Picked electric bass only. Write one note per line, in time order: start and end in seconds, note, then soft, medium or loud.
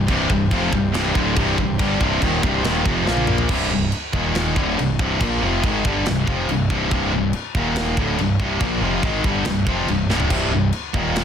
0.08 0.28 C1 medium
0.29 0.50 C1 medium
0.51 0.71 F1 medium
0.73 0.93 C1 medium
0.93 1.14 C1 loud
1.15 1.35 D1 medium
1.37 1.57 C1 loud
1.58 1.78 C1 medium
1.79 1.99 G1 medium
2.00 2.20 C1 medium
2.22 2.42 D#1 medium
2.43 2.63 C1 medium
2.65 2.85 D#1 loud
2.85 3.06 F1 medium
3.08 3.48 A#1 medium
3.49 3.70 C1 medium
3.71 3.91 C1 medium
4.13 4.54 D#1 medium
4.56 4.77 D1 medium
4.79 4.98 C1 medium
4.99 5.19 C1 medium
5.21 5.41 A#1 medium
5.43 5.63 F1 medium
5.64 5.84 G#1 medium
5.85 6.05 G1 medium
6.08 6.27 C1 medium
6.28 6.48 F1 loud
6.49 6.69 C1 medium
6.70 6.90 C1 medium
6.91 7.11 C1 medium
7.13 7.33 C1 medium
7.54 7.94 D#1 loud
7.97 8.17 D1 loud
8.19 8.39 C1 medium
8.39 8.59 C1 medium
8.61 8.80 A#1 medium
8.81 9.02 F1 medium
9.03 9.23 G#1 medium
9.24 9.44 G1 medium
9.45 9.65 C1 medium
9.67 9.87 F1 medium
9.87 10.08 C1 medium
10.09 10.29 C1 medium
10.30 10.50 C1 medium
10.53 10.72 C1 medium
10.94 11.24 D#1 loud